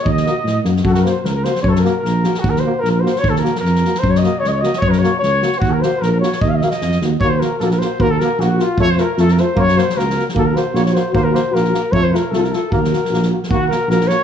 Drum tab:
SD |-oo-o-oo|-oo-o-oo|-oo-o-oo|-o--o-oo|
BD |o-------|o-------|o-------|o-------|

SD |-ooooooo|-oo-o-oo|-oo-o-oo|--o-o-oo|
BD |o-------|o-------|o-------|o-------|

SD |--ooooo-|--o-ooo-|--o-o-o-|--o-ooo-|
BD |o-------|o-------|o-------|o-------|

SD |-ooooooo|--o-ooo-|--o-ooo-|--o-ooo-|
BD |o-------|o-------|o-------|o-------|

SD |-ooooo-o|--o-ooo-|
BD |o-------|o-------|